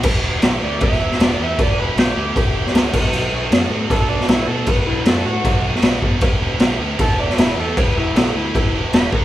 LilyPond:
<<
  \new Staff \with { instrumentName = "Analog synth lead" } { \time 4/4 \key e \minor \tempo 4 = 155 r4. d''8 e''4 d''8 e''8 | d''8 b'8 g'2~ g'8 r8 | r2 a'8 d'8 e'8 a'8 | b'8 e'8 a'8 fis'4 r4. |
r2 a'8 d'8 e'8 a'8 | b'8 e'8 a'8 e'4 r8 b''8 ais''8 | }
  \new Staff \with { instrumentName = "Distorted electric guitar" } { \time 4/4 \key e \minor <e b e' g'>8 <e b e' g'>8 <e b e' g'>8 <e b e' g'>8 <e b e' g'>8 <e b e' g'>8 <e b e' g'>8 <e b e' g'>8 | <e b e' g'>8 <e b e' g'>8 <e b e' g'>8 <e b e' g'>8 <e b e' g'>8 <e b e' g'>8 <e b e' g'>8 <b, fis b d' fis'>8 | <b, fis b d' fis'>8 <b, fis b d' fis'>8 <b, fis b d' fis'>8 <b, fis b d' fis'>8 <b, fis b d' fis'>8 <b, fis b d' fis'>8 <b, fis b d' fis'>8 <b, fis b d' fis'>8 | <b, fis b d' fis'>8 <b, fis b d' fis'>8 <b, fis b d' fis'>8 <b, fis b d' fis'>8 <b, fis b d' fis'>8 <b, fis b d' fis'>8 <b, fis b d' fis'>8 <b, fis b d' fis'>8 |
<e b e' g'>8 <e b e' g'>8 <e b e' g'>8 <e b e' g'>8 <e b e' g'>8 <e b e' g'>8 <e b e' g'>8 <e b e' g'>8 | <e b e' g'>8 <e b e' g'>8 <e b e' g'>8 <e b e' g'>8 <e b e' g'>8 <e b e' g'>8 <e b e' g'>8 <b, fis b d' fis'>8 | }
  \new Staff \with { instrumentName = "Picked electric bass" } { \clef bass \time 4/4 \key e \minor e,,8 e,,8 b,,8 d,8 e,,4 e,,8 e,8 | e,,8 e,,8 b,,8 d,8 e,,4 cis,8 b,,8 | b,,8 b,,8 fis,8 a,8 b,,4 b,,8 b,8 | b,,8 b,,8 fis,8 a,8 b,,4 b,,8 b,8 |
e,,8 e,,8 b,,8 d,8 e,,4 e,,8 e,8 | e,,8 e,,8 b,,8 d,8 e,,4 e,,8 b,,8 | }
  \new DrumStaff \with { instrumentName = "Drums" } \drummode { \time 4/4 <cymc bd>4 <cymc sn>4 <cymc bd>16 sn8 sn16 <cymc sn>4 | <cymc bd>4 <cymc sn>4 <cymc bd>8. sn16 <cymc sn>8 <cymc bd>8 | cymc4 <cymc sn>4 <cymc bd>8. sn16 <cymc sn>4 | <cymc bd>4 <cymc sn>4 <cymc bd>8. sn16 <cymc sn>8 bd8 |
<cymc bd>4 <cymc sn>4 <cymc bd>8. sn16 <cymc sn>4 | <cymc bd>4 <cymc sn>4 <cymc bd>4 <cymc sn>8 bd8 | }
>>